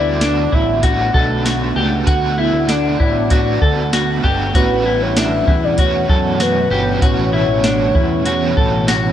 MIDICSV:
0, 0, Header, 1, 7, 480
1, 0, Start_track
1, 0, Tempo, 618557
1, 1609, Time_signature, 4, 2, 24, 8
1, 7081, End_track
2, 0, Start_track
2, 0, Title_t, "Soft synth lead"
2, 0, Program_c, 0, 80
2, 0, Note_on_c, 0, 74, 105
2, 417, Note_on_c, 0, 76, 94
2, 429, Note_off_c, 0, 74, 0
2, 647, Note_off_c, 0, 76, 0
2, 652, Note_on_c, 0, 78, 83
2, 1339, Note_off_c, 0, 78, 0
2, 1618, Note_on_c, 0, 78, 114
2, 1853, Note_on_c, 0, 76, 99
2, 1864, Note_off_c, 0, 78, 0
2, 2090, Note_on_c, 0, 74, 77
2, 2102, Note_off_c, 0, 76, 0
2, 3289, Note_off_c, 0, 74, 0
2, 3536, Note_on_c, 0, 71, 100
2, 3896, Note_on_c, 0, 73, 84
2, 3908, Note_off_c, 0, 71, 0
2, 4018, Note_on_c, 0, 76, 100
2, 4030, Note_off_c, 0, 73, 0
2, 4378, Note_on_c, 0, 74, 97
2, 4389, Note_off_c, 0, 76, 0
2, 4495, Note_on_c, 0, 73, 96
2, 4507, Note_off_c, 0, 74, 0
2, 4978, Note_on_c, 0, 71, 82
2, 4990, Note_off_c, 0, 73, 0
2, 5452, Note_on_c, 0, 73, 104
2, 5464, Note_off_c, 0, 71, 0
2, 7081, Note_off_c, 0, 73, 0
2, 7081, End_track
3, 0, Start_track
3, 0, Title_t, "Clean electric guitar"
3, 0, Program_c, 1, 27
3, 0, Note_on_c, 1, 64, 69
3, 168, Note_off_c, 1, 64, 0
3, 169, Note_on_c, 1, 62, 68
3, 406, Note_on_c, 1, 64, 61
3, 409, Note_off_c, 1, 62, 0
3, 642, Note_off_c, 1, 64, 0
3, 645, Note_on_c, 1, 66, 64
3, 883, Note_off_c, 1, 66, 0
3, 886, Note_on_c, 1, 69, 69
3, 1124, Note_off_c, 1, 69, 0
3, 1127, Note_on_c, 1, 66, 64
3, 1363, Note_off_c, 1, 66, 0
3, 1366, Note_on_c, 1, 67, 67
3, 1602, Note_off_c, 1, 67, 0
3, 1605, Note_on_c, 1, 66, 90
3, 1843, Note_off_c, 1, 66, 0
3, 1846, Note_on_c, 1, 64, 65
3, 2087, Note_on_c, 1, 62, 77
3, 2088, Note_off_c, 1, 64, 0
3, 2327, Note_on_c, 1, 64, 59
3, 2328, Note_off_c, 1, 62, 0
3, 2565, Note_off_c, 1, 64, 0
3, 2568, Note_on_c, 1, 66, 65
3, 2805, Note_off_c, 1, 66, 0
3, 2808, Note_on_c, 1, 69, 68
3, 3047, Note_off_c, 1, 69, 0
3, 3050, Note_on_c, 1, 66, 76
3, 3285, Note_off_c, 1, 66, 0
3, 3288, Note_on_c, 1, 67, 72
3, 3526, Note_off_c, 1, 67, 0
3, 3529, Note_on_c, 1, 66, 97
3, 3765, Note_off_c, 1, 66, 0
3, 3768, Note_on_c, 1, 64, 69
3, 4009, Note_off_c, 1, 64, 0
3, 4010, Note_on_c, 1, 62, 71
3, 4249, Note_off_c, 1, 62, 0
3, 4249, Note_on_c, 1, 64, 61
3, 4488, Note_off_c, 1, 64, 0
3, 4491, Note_on_c, 1, 66, 79
3, 4726, Note_off_c, 1, 66, 0
3, 4729, Note_on_c, 1, 69, 70
3, 4965, Note_off_c, 1, 69, 0
3, 4968, Note_on_c, 1, 66, 68
3, 5205, Note_off_c, 1, 66, 0
3, 5208, Note_on_c, 1, 67, 71
3, 5447, Note_off_c, 1, 67, 0
3, 5450, Note_on_c, 1, 66, 89
3, 5685, Note_off_c, 1, 66, 0
3, 5688, Note_on_c, 1, 64, 75
3, 5928, Note_off_c, 1, 64, 0
3, 5929, Note_on_c, 1, 62, 70
3, 6169, Note_off_c, 1, 62, 0
3, 6170, Note_on_c, 1, 64, 68
3, 6406, Note_off_c, 1, 64, 0
3, 6409, Note_on_c, 1, 66, 70
3, 6647, Note_off_c, 1, 66, 0
3, 6650, Note_on_c, 1, 69, 67
3, 6889, Note_off_c, 1, 69, 0
3, 6892, Note_on_c, 1, 66, 78
3, 7081, Note_off_c, 1, 66, 0
3, 7081, End_track
4, 0, Start_track
4, 0, Title_t, "Overdriven electric guitar"
4, 0, Program_c, 2, 29
4, 0, Note_on_c, 2, 50, 67
4, 0, Note_on_c, 2, 57, 74
4, 0, Note_on_c, 2, 59, 71
4, 0, Note_on_c, 2, 66, 72
4, 632, Note_off_c, 2, 50, 0
4, 641, Note_on_c, 2, 50, 53
4, 647, Note_off_c, 2, 57, 0
4, 650, Note_on_c, 2, 57, 53
4, 655, Note_off_c, 2, 59, 0
4, 658, Note_on_c, 2, 59, 60
4, 661, Note_off_c, 2, 66, 0
4, 664, Note_on_c, 2, 66, 57
4, 1359, Note_off_c, 2, 66, 0
4, 1362, Note_on_c, 2, 66, 47
4, 1365, Note_off_c, 2, 50, 0
4, 1372, Note_off_c, 2, 59, 0
4, 1375, Note_on_c, 2, 59, 43
4, 1384, Note_off_c, 2, 57, 0
4, 1387, Note_on_c, 2, 57, 46
4, 1595, Note_on_c, 2, 50, 61
4, 1600, Note_off_c, 2, 57, 0
4, 1606, Note_off_c, 2, 66, 0
4, 1610, Note_on_c, 2, 57, 67
4, 1612, Note_off_c, 2, 59, 0
4, 1622, Note_on_c, 2, 59, 75
4, 1632, Note_on_c, 2, 66, 87
4, 2550, Note_off_c, 2, 50, 0
4, 2559, Note_on_c, 2, 50, 47
4, 2566, Note_off_c, 2, 57, 0
4, 2569, Note_on_c, 2, 57, 52
4, 2573, Note_off_c, 2, 59, 0
4, 2576, Note_on_c, 2, 59, 62
4, 2580, Note_off_c, 2, 66, 0
4, 2583, Note_on_c, 2, 66, 56
4, 3277, Note_off_c, 2, 66, 0
4, 3280, Note_on_c, 2, 66, 44
4, 3284, Note_off_c, 2, 50, 0
4, 3290, Note_off_c, 2, 59, 0
4, 3294, Note_on_c, 2, 59, 53
4, 3300, Note_off_c, 2, 57, 0
4, 3303, Note_on_c, 2, 57, 37
4, 3513, Note_on_c, 2, 45, 78
4, 3524, Note_off_c, 2, 66, 0
4, 3524, Note_on_c, 2, 52, 73
4, 3530, Note_off_c, 2, 57, 0
4, 3531, Note_off_c, 2, 59, 0
4, 3534, Note_on_c, 2, 55, 80
4, 3542, Note_on_c, 2, 61, 84
4, 3549, Note_on_c, 2, 66, 73
4, 4469, Note_off_c, 2, 52, 0
4, 4478, Note_on_c, 2, 52, 52
4, 4481, Note_off_c, 2, 45, 0
4, 4491, Note_off_c, 2, 55, 0
4, 4492, Note_off_c, 2, 61, 0
4, 4496, Note_on_c, 2, 61, 59
4, 4500, Note_off_c, 2, 66, 0
4, 4503, Note_on_c, 2, 66, 64
4, 5200, Note_off_c, 2, 66, 0
4, 5203, Note_off_c, 2, 52, 0
4, 5203, Note_on_c, 2, 66, 45
4, 5213, Note_off_c, 2, 61, 0
4, 5216, Note_on_c, 2, 61, 39
4, 5225, Note_on_c, 2, 55, 32
4, 5439, Note_on_c, 2, 45, 70
4, 5446, Note_off_c, 2, 66, 0
4, 5451, Note_off_c, 2, 55, 0
4, 5452, Note_off_c, 2, 61, 0
4, 5452, Note_on_c, 2, 52, 77
4, 5461, Note_on_c, 2, 55, 72
4, 5468, Note_on_c, 2, 61, 77
4, 5478, Note_on_c, 2, 66, 81
4, 6394, Note_off_c, 2, 52, 0
4, 6403, Note_off_c, 2, 55, 0
4, 6404, Note_off_c, 2, 45, 0
4, 6404, Note_on_c, 2, 52, 57
4, 6413, Note_on_c, 2, 55, 57
4, 6415, Note_off_c, 2, 61, 0
4, 6419, Note_on_c, 2, 61, 65
4, 6422, Note_off_c, 2, 66, 0
4, 6426, Note_on_c, 2, 66, 66
4, 7081, Note_off_c, 2, 52, 0
4, 7081, Note_off_c, 2, 55, 0
4, 7081, Note_off_c, 2, 61, 0
4, 7081, Note_off_c, 2, 66, 0
4, 7081, End_track
5, 0, Start_track
5, 0, Title_t, "Ambient pad"
5, 0, Program_c, 3, 92
5, 0, Note_on_c, 3, 57, 61
5, 0, Note_on_c, 3, 59, 70
5, 0, Note_on_c, 3, 62, 64
5, 0, Note_on_c, 3, 78, 89
5, 3496, Note_off_c, 3, 57, 0
5, 3496, Note_off_c, 3, 62, 0
5, 3498, Note_off_c, 3, 59, 0
5, 3528, Note_on_c, 3, 47, 74
5, 3529, Note_on_c, 3, 52, 72
5, 3529, Note_on_c, 3, 59, 68
5, 3530, Note_on_c, 3, 57, 70
5, 7081, Note_off_c, 3, 47, 0
5, 7081, Note_off_c, 3, 52, 0
5, 7081, Note_off_c, 3, 57, 0
5, 7081, Note_off_c, 3, 59, 0
5, 7081, Note_off_c, 3, 78, 0
5, 7081, End_track
6, 0, Start_track
6, 0, Title_t, "Analog synth bass"
6, 0, Program_c, 4, 38
6, 0, Note_on_c, 4, 38, 92
6, 376, Note_off_c, 4, 38, 0
6, 407, Note_on_c, 4, 33, 86
6, 864, Note_off_c, 4, 33, 0
6, 887, Note_on_c, 4, 35, 87
6, 1344, Note_off_c, 4, 35, 0
6, 1366, Note_on_c, 4, 37, 83
6, 1595, Note_off_c, 4, 37, 0
6, 1607, Note_on_c, 4, 38, 84
6, 1950, Note_off_c, 4, 38, 0
6, 1965, Note_on_c, 4, 38, 98
6, 2309, Note_off_c, 4, 38, 0
6, 2328, Note_on_c, 4, 33, 82
6, 2784, Note_off_c, 4, 33, 0
6, 2807, Note_on_c, 4, 38, 101
6, 3264, Note_off_c, 4, 38, 0
6, 3288, Note_on_c, 4, 31, 89
6, 3516, Note_off_c, 4, 31, 0
6, 3527, Note_on_c, 4, 33, 95
6, 4217, Note_off_c, 4, 33, 0
6, 4248, Note_on_c, 4, 40, 95
6, 4705, Note_off_c, 4, 40, 0
6, 4728, Note_on_c, 4, 42, 82
6, 5184, Note_off_c, 4, 42, 0
6, 5205, Note_on_c, 4, 31, 86
6, 5435, Note_off_c, 4, 31, 0
6, 5447, Note_on_c, 4, 33, 96
6, 5790, Note_off_c, 4, 33, 0
6, 5803, Note_on_c, 4, 33, 83
6, 6148, Note_off_c, 4, 33, 0
6, 6170, Note_on_c, 4, 40, 84
6, 6626, Note_off_c, 4, 40, 0
6, 6649, Note_on_c, 4, 33, 94
6, 7081, Note_off_c, 4, 33, 0
6, 7081, End_track
7, 0, Start_track
7, 0, Title_t, "Drums"
7, 164, Note_on_c, 9, 42, 69
7, 165, Note_on_c, 9, 38, 105
7, 242, Note_off_c, 9, 42, 0
7, 243, Note_off_c, 9, 38, 0
7, 408, Note_on_c, 9, 36, 79
7, 486, Note_off_c, 9, 36, 0
7, 644, Note_on_c, 9, 42, 85
7, 647, Note_on_c, 9, 36, 80
7, 721, Note_off_c, 9, 42, 0
7, 725, Note_off_c, 9, 36, 0
7, 887, Note_on_c, 9, 36, 83
7, 965, Note_off_c, 9, 36, 0
7, 1130, Note_on_c, 9, 42, 59
7, 1131, Note_on_c, 9, 38, 88
7, 1207, Note_off_c, 9, 42, 0
7, 1209, Note_off_c, 9, 38, 0
7, 1607, Note_on_c, 9, 36, 95
7, 1607, Note_on_c, 9, 42, 55
7, 1684, Note_off_c, 9, 36, 0
7, 1685, Note_off_c, 9, 42, 0
7, 2085, Note_on_c, 9, 42, 71
7, 2086, Note_on_c, 9, 38, 97
7, 2162, Note_off_c, 9, 42, 0
7, 2163, Note_off_c, 9, 38, 0
7, 2328, Note_on_c, 9, 36, 80
7, 2406, Note_off_c, 9, 36, 0
7, 2564, Note_on_c, 9, 42, 79
7, 2568, Note_on_c, 9, 36, 87
7, 2641, Note_off_c, 9, 42, 0
7, 2646, Note_off_c, 9, 36, 0
7, 2808, Note_on_c, 9, 36, 90
7, 2885, Note_off_c, 9, 36, 0
7, 3049, Note_on_c, 9, 42, 64
7, 3051, Note_on_c, 9, 38, 111
7, 3127, Note_off_c, 9, 42, 0
7, 3128, Note_off_c, 9, 38, 0
7, 3289, Note_on_c, 9, 36, 67
7, 3366, Note_off_c, 9, 36, 0
7, 3528, Note_on_c, 9, 36, 91
7, 3530, Note_on_c, 9, 42, 58
7, 3606, Note_off_c, 9, 36, 0
7, 3608, Note_off_c, 9, 42, 0
7, 4008, Note_on_c, 9, 42, 70
7, 4009, Note_on_c, 9, 38, 110
7, 4085, Note_off_c, 9, 42, 0
7, 4087, Note_off_c, 9, 38, 0
7, 4249, Note_on_c, 9, 36, 92
7, 4327, Note_off_c, 9, 36, 0
7, 4483, Note_on_c, 9, 42, 71
7, 4488, Note_on_c, 9, 36, 90
7, 4561, Note_off_c, 9, 42, 0
7, 4566, Note_off_c, 9, 36, 0
7, 4728, Note_on_c, 9, 36, 94
7, 4805, Note_off_c, 9, 36, 0
7, 4966, Note_on_c, 9, 42, 59
7, 4967, Note_on_c, 9, 38, 102
7, 5044, Note_off_c, 9, 42, 0
7, 5045, Note_off_c, 9, 38, 0
7, 5447, Note_on_c, 9, 36, 103
7, 5449, Note_on_c, 9, 42, 56
7, 5525, Note_off_c, 9, 36, 0
7, 5527, Note_off_c, 9, 42, 0
7, 5927, Note_on_c, 9, 42, 63
7, 5928, Note_on_c, 9, 38, 97
7, 6004, Note_off_c, 9, 42, 0
7, 6005, Note_off_c, 9, 38, 0
7, 6170, Note_on_c, 9, 36, 83
7, 6247, Note_off_c, 9, 36, 0
7, 6406, Note_on_c, 9, 42, 81
7, 6484, Note_off_c, 9, 42, 0
7, 6650, Note_on_c, 9, 36, 79
7, 6727, Note_off_c, 9, 36, 0
7, 6891, Note_on_c, 9, 42, 66
7, 6892, Note_on_c, 9, 38, 95
7, 6968, Note_off_c, 9, 42, 0
7, 6970, Note_off_c, 9, 38, 0
7, 7081, End_track
0, 0, End_of_file